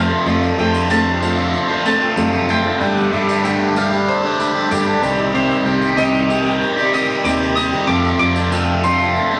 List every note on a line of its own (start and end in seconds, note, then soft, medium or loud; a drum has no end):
0.00 0.10 C3 medium
0.00 0.25 F3 medium
0.00 0.26 A3 medium
0.00 0.26 C4 medium
0.00 0.24 F4 medium
0.00 0.27 F4 medium
0.00 0.24 A4 medium
0.00 0.24 C5 medium
0.00 0.59 F5 medium
0.09 0.25 C4 medium
0.09 0.25 D4 medium
0.09 0.25 A4 medium
0.25 0.87 F2 medium
0.25 0.50 F2 loud
0.25 0.88 C3 medium
0.25 0.56 F3 loud
0.25 0.57 A3 loud
0.25 0.57 C4 medium
0.25 0.58 D4 medium
0.25 2.78 F4 medium
0.25 0.59 F4 medium
0.25 2.78 A4 medium
0.25 0.58 A4 medium
0.25 2.78 D5 medium
0.25 tambourine soft
0.43 tambourine soft
0.57 1.54 F2 medium
0.57 0.74 F3 medium
0.57 0.74 A3 medium
0.57 0.72 C4 loud
0.57 0.90 D4 medium
0.57 0.71 F4 medium
0.57 0.91 A4 medium
0.57 0.88 G5 medium
0.57 tambourine soft
0.72 0.88 F3 soft
0.72 0.90 A3 medium
0.72 0.89 C4 medium
0.72 0.90 F4 medium
0.72 tambourine medium
0.88 1.53 F2 medium
0.88 1.53 C3 medium
0.88 1.19 F3 medium
0.88 1.20 A3 medium
0.88 1.22 C4 medium
0.88 1.22 D4 medium
0.88 1.22 F4 medium
0.88 1.22 A4 medium
0.88 1.85 A5 loud
0.88 tambourine medium
1.20 1.39 F3 medium
1.20 1.38 A3 medium
1.20 1.37 C4 medium
1.20 1.69 D4 medium
1.20 1.36 F4 medium
1.20 1.68 A4 medium
1.20 tambourine medium
1.37 1.70 F3 medium
1.37 1.69 A3 medium
1.37 1.68 C4 medium
1.37 1.67 F4 medium
1.37 tambourine soft
1.54 tambourine soft
1.68 1.82 F3 medium
1.68 1.84 A3 medium
1.68 1.85 C4 medium
1.68 1.84 D4 medium
1.68 1.85 F4 medium
1.68 1.85 A4 medium
1.84 2.01 F3 medium
1.84 2.00 A3 medium
1.84 1.99 C4 medium
1.84 2.15 D4 medium
1.84 1.98 F4 medium
1.84 2.16 A4 medium
1.84 2.49 A5 medium
1.84 tambourine medium
1.99 2.15 F3 medium
1.99 2.16 A3 medium
1.99 2.16 C4 medium
1.99 2.17 F4 medium
2.15 2.64 F2 medium
2.15 2.65 F#2 loud
2.15 2.64 C3 loud
2.15 2.34 F3 medium
2.15 2.33 A3 medium
2.15 2.32 C4 loud
2.15 2.49 D4 medium
2.15 2.31 F4 loud
2.15 2.49 A4 medium
2.15 tambourine loud
2.32 2.47 F3 medium
2.32 2.48 A3 medium
2.32 2.49 C4 medium
2.32 2.49 F4 medium
2.32 tambourine soft
2.48 2.78 F3 medium
2.48 2.78 A3 medium
2.48 2.79 C4 medium
2.48 2.64 D4 medium
2.48 2.80 F4 medium
2.48 2.63 A4 medium
2.48 3.77 G5 loud
2.48 tambourine medium
2.64 2.80 C4 medium
2.64 2.80 D4 medium
2.64 2.80 A4 medium
2.79 3.12 G2 medium
2.79 3.04 G2 loud
2.79 3.12 D3 medium
2.79 3.11 G3 medium
2.79 3.11 A3 loud
2.79 3.12 D4 loud
2.79 5.01 G4 medium
2.79 3.13 G4 loud
2.79 5.01 A4 medium
2.79 3.12 A4 medium
2.79 5.01 D5 medium
2.79 tambourine soft
2.97 tambourine soft
3.11 4.08 G2 medium
3.11 3.42 G3 medium
3.11 3.29 A3 medium
3.11 3.28 D4 medium
3.11 3.27 G4 medium
3.11 3.44 A4 medium
3.11 tambourine soft
3.28 3.43 A3 medium
3.28 3.44 D4 medium
3.28 3.45 G4 medium
3.28 tambourine medium
3.43 3.76 G2 medium
3.43 3.76 D3 loud
3.43 3.75 G3 medium
3.43 3.76 A3 loud
3.43 3.76 D4 medium
3.43 3.78 G4 loud
3.43 3.76 A4 medium
3.43 tambourine medium
3.75 4.23 G3 medium
3.75 3.93 A3 medium
3.75 3.92 D4 medium
3.75 3.90 G4 medium
3.75 4.22 A4 medium
3.75 4.09 F5 loud
3.75 tambourine medium
3.91 4.24 A3 medium
3.91 4.23 D4 medium
3.91 4.21 G4 medium
3.91 tambourine soft
4.08 4.71 C5 medium
4.08 tambourine soft
4.22 4.36 G3 soft
4.22 4.38 A3 medium
4.22 4.39 D4 medium
4.22 4.40 G4 medium
4.22 4.38 A4 medium
4.38 4.69 G3 medium
4.38 4.56 A3 medium
4.38 4.55 D4 medium
4.38 4.53 G4 medium
4.38 4.69 A4 medium
4.38 tambourine medium
4.54 4.70 A3 medium
4.54 4.71 D4 medium
4.54 4.72 G4 medium
4.70 5.02 G2 medium
4.70 4.95 G2 loud
4.70 5.02 D3 medium
4.70 5.00 G3 medium
4.70 4.87 A3 medium
4.70 4.86 D4 loud
4.70 4.85 G4 loud
4.70 5.02 A4 medium
4.70 5.35 D5 medium
4.70 tambourine medium
4.86 5.02 A3 medium
4.86 5.01 D4 medium
4.86 5.00 G4 medium
5.01 5.51 C2 loud
5.01 5.31 C3 medium
5.01 5.33 D#3 medium
5.01 5.33 G3 loud
5.01 5.35 C4 medium
5.01 7.86 D#4 medium
5.01 5.17 D#4 medium
5.01 7.86 G4 medium
5.01 5.35 G4 medium
5.01 7.86 C5 medium
5.01 tambourine medium
5.17 5.33 C4 soft
5.17 5.33 D#4 medium
5.17 5.33 G4 medium
5.33 5.96 C3 loud
5.33 5.63 D#3 medium
5.33 5.65 G3 loud
5.33 5.66 C4 loud
5.33 5.65 D#4 medium
5.33 5.66 G4 loud
5.33 5.94 C5 loud
5.33 tambourine soft
5.51 tambourine soft
5.65 6.61 C2 medium
5.65 5.96 D#3 medium
5.65 5.83 G3 medium
5.65 5.82 C4 medium
5.65 5.97 D#4 medium
5.65 5.80 G4 medium
5.65 tambourine soft
5.81 5.97 G3 medium
5.81 5.99 C4 medium
5.81 5.99 G4 medium
5.81 tambourine medium
5.97 6.61 C3 medium
5.97 6.28 D#3 medium
5.97 6.29 G3 medium
5.97 6.31 C4 loud
5.97 6.29 D#4 loud
5.97 6.31 G4 loud
5.97 6.96 D#5 loud
5.97 tambourine medium
6.14 tambourine soft
6.29 6.77 D#3 medium
6.29 6.47 G3 medium
6.29 6.46 C4 medium
6.29 6.76 D#4 medium
6.29 6.44 G4 medium
6.29 tambourine medium
6.45 6.78 G3 medium
6.45 6.78 C4 medium
6.45 6.75 G4 medium
6.45 tambourine soft
6.62 tambourine soft
6.77 6.92 G3 medium
6.77 6.93 C4 medium
6.77 6.93 D#4 soft
6.77 6.94 G4 medium
6.77 tambourine soft
6.92 7.24 D#3 medium
6.92 7.10 G3 medium
6.92 7.09 C4 medium
6.92 7.24 D#4 medium
6.92 7.07 G4 medium
6.92 7.24 D#6 loud
6.92 tambourine medium
7.08 7.25 G3 medium
7.08 7.26 C4 medium
7.08 7.26 G4 medium
7.08 tambourine soft
7.24 7.72 D#2 loud
7.24 7.72 C3 medium
7.24 7.54 D#3 medium
7.24 7.42 G3 medium
7.24 7.41 C4 medium
7.24 7.56 D#4 medium
7.24 7.38 G4 loud
7.24 7.55 D6 loud
7.24 tambourine loud
7.39 7.56 G3 medium
7.39 7.57 C4 medium
7.39 7.58 G4 medium
7.39 tambourine soft
7.55 7.86 D#3 medium
7.55 7.87 G3 medium
7.55 7.90 C4 medium
7.55 7.71 D#4 medium
7.55 7.88 G4 medium
7.55 7.86 D#6 loud
7.55 tambourine medium
7.71 7.87 C4 soft
7.71 7.88 D#4 medium
7.71 7.88 G4 medium
7.71 tambourine soft
7.87 8.50 F2 medium
7.87 8.12 F2 loud
7.87 8.50 C3 medium
7.87 8.19 F3 medium
7.87 8.20 A3 loud
7.87 8.20 C4 loud
7.87 8.20 D4 medium
7.87 9.40 F4 medium
7.87 8.22 F4 loud
7.87 8.20 A4 medium
7.87 9.40 A4 medium
7.87 9.40 D5 medium
7.87 8.18 D6 loud
7.87 tambourine soft
8.05 tambourine soft
8.19 9.16 F2 medium
8.19 8.38 F3 medium
8.19 8.37 A3 medium
8.19 8.36 C4 medium
8.19 8.52 D4 medium
8.19 8.35 F4 medium
8.19 8.52 A4 medium
8.19 8.83 D6 loud
8.19 tambourine soft
8.35 8.52 F3 medium
8.35 8.52 A3 medium
8.35 8.52 C4 medium
8.35 8.53 F4 medium
8.35 tambourine medium
8.50 9.40 F2 medium
8.50 9.15 C3 loud
8.50 8.82 F3 medium
8.50 8.83 A3 loud
8.50 8.84 C4 medium
8.50 8.84 D4 medium
8.50 8.85 F4 medium
8.50 8.84 A4 medium
8.50 tambourine loud
8.82 9.00 F3 medium
8.82 9.00 A3 medium
8.82 8.99 C4 medium
8.82 9.31 D4 medium
8.82 8.97 F4 medium
8.82 9.30 A4 medium
8.82 9.40 C6 loud
8.82 tambourine medium
8.98 9.33 F3 medium
8.98 9.33 A3 medium
8.98 9.31 C4 medium
8.98 9.30 F4 medium
8.98 tambourine soft
9.16 tambourine soft
9.31 9.40 F3 medium
9.31 9.40 A3 medium
9.31 9.40 C4 medium
9.31 9.40 D4 medium
9.31 9.40 F4 medium
9.31 9.40 A4 soft